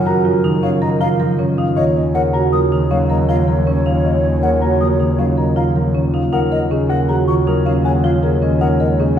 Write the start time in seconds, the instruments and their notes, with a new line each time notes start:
Already playing: double bass F#2, harp C#3 D#3 F3 F#3 C#4, grand piano A#4, alto flute A#4, marimba C#5
0.06 marimba F#4, grand piano A#5
0.25 harp F3, marimba F4, grand piano A#4
0.44 harp D#3, marimba D#4
0.63 marimba C#4, grand piano C#5, flute F5
0.82 marimba A#4, grand piano D#5, flute A#5
1.00 marimba F4, flute F5, grand piano A#5
1.20 harp F3, marimba A#4
1.38 harp D#3, marimba C#4, grand piano C#5
1.58 marimba D#4, grand piano F5
1.76 double bass D#2, grand piano C#5, alto flute C#5, marimba C#5, flute D#5
1.96 harp C#4
2.14 harp C#3, grand piano A#4, marimba C#5, flute F#5
2.33 marimba F#4, grand piano A#5
2.52 harp F3, marimba F4, grand piano A#4, flute D#6
2.72 harp D#3, marimba D#4
2.91 harp F#3, marimba C#4, grand piano C#5, flute F5
3.10 marimba A#4, grand piano D#5, flute A#5
3.29 marimba F4, flute F5, grand piano A#5
3.48 harp F3, marimba A#4
3.67 harp D#3, marimba C#4, grand piano C#5
3.86 marimba D#4, grand piano F5
4.05 grand piano C#5, marimba C#5, flute D#5
4.24 harp C#4
4.42 harp C#3, grand piano A#4, marimba C#5, flute F#5
4.62 marimba F#4, grand piano A#5
4.80 harp F3, marimba F4, grand piano A#4, flute D#6
5.00 harp D#3, marimba D#4
5.18 harp F#3, marimba C#4, grand piano C#5, flute F5
5.37 marimba A#4, grand piano D#5, flute A#5
5.56 marimba F4, flute F5, grand piano A#5
5.75 harp F3, marimba A#4
5.94 harp D#3, marimba C#4, grand piano C#5
6.13 marimba D#4, grand piano F5
6.32 double bass D#2, marimba D#4, grand piano A#4, alto flute C#5, flute F#5
6.51 harp A#3, marimba A#4, flute D#5
6.71 harp C#3, marimba C#4, grand piano G#4
6.89 marimba A#4, grand piano F#5, flute F#5
7.09 harp F3, marimba F#4, grand piano G#4, flute A#5
7.28 harp D#3, marimba F4, flute C#6
7.47 harp F#3, marimba D#4, grand piano A#4
7.65 harp A#3, marimba C#4, grand piano C#5, flute F5
7.85 marimba G#4, grand piano F#5, flute G#5
8.04 harp F3, marimba F4, flute F5
8.23 harp D#3, marimba G#4, grand piano A#4
8.42 harp G#3, marimba C#4, grand piano D#5
8.61 marimba D#4, grand piano A#4, flute F#5
8.80 marimba A#4, flute D#5
8.99 harp C#3, marimba C#4, grand piano G#4